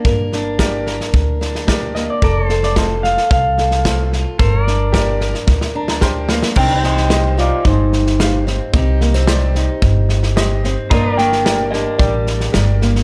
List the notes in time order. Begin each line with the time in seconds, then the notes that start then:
Already playing: A#3 D4 A#4 D5
0.05 G1 G2 A#4, kick, snare
0.32 D4, snare
0.59 G3 G4 A#4 D5, kick, snare, hi-hat pedal
0.87 A#4, snare
1.01 snare
1.14 D2 D3, kick, snare
1.41 D4, snare
1.55 snare
1.67 G3 G4 A#4 D5, kick, snare, hi-hat pedal
1.95 A#3 D#5, snare
2.10 D5
2.22 F1 F3 A4 A#4 D5, kick, snare
2.44 A4
2.49 A4 C5, snare
2.63 D5, snare
2.76 C4 F4 A4 C5 D#5, kick, snare, hi-hat pedal
3.03 A4 F5, snare
3.17 snare
3.30 C2 C3 F5, kick, snare
3.58 A4, snare
3.71 snare
3.85 C4 F4 A4 C5, kick, snare, hi-hat pedal
4.13 F4, snare
4.39 G1 G2 A4 A#4 C5, kick, snare
4.59 A#4
4.65 D4 D5, snare
4.92 G3 G4 A#4 D5, kick, snare, hi-hat pedal
5.21 A#4, snare
5.34 snare
5.47 D2 D3, kick, snare
5.61 snare
5.75 D4 A#5
5.88 A#5, snare
6.01 G3 G4 A#4 C5 G5, kick, snare, hi-hat pedal
6.29 A#3 F5, snare
6.43 snare
6.56 C2 C3 C4 D4 D#4 G4 A#4 C5 G5, kick, snare, crash
6.78 D#4
6.82 C4 G4 C5 D#5, snare
6.97 snare
7.10 G3 G4 C5 D#5, snare, hi-hat pedal
7.37 D#4 F4 D5, snare
7.65 G1 G2 D#4 C5, kick, snare
7.93 snare
8.07 snare
8.19 G3 G4 C5 F5, snare, hi-hat pedal
8.47 C4, snare
8.73 C2 C3 C4 D#4 G4, kick, snare
9.01 A#3, snare
9.14 C4, snare
9.27 G3 G4 C5 D5, snare, hi-hat pedal
9.55 D#4, snare
9.82 G1 G2, kick, snare
10.09 snare
10.23 snare
10.36 G3 G4 C5 D#5, snare, hi-hat pedal
10.64 C4, snare
10.90 G1 G2 A#3 D4 A#4 C5 D5 D#5 A#5, kick, snare
11.11 A#4 D5
11.17 A#3 A#4 G5, snare
11.32 snare
11.45 G3 G4 A#4 D5, snare, hi-hat pedal
11.71 D4 G4 D#5, snare
11.99 A1 D3 G4 D5, kick, snare
12.27 snare
12.40 snare
12.53 G1 G3 G4 A#4 D5, snare, hi-hat pedal
12.82 A#3, snare
12.95 snare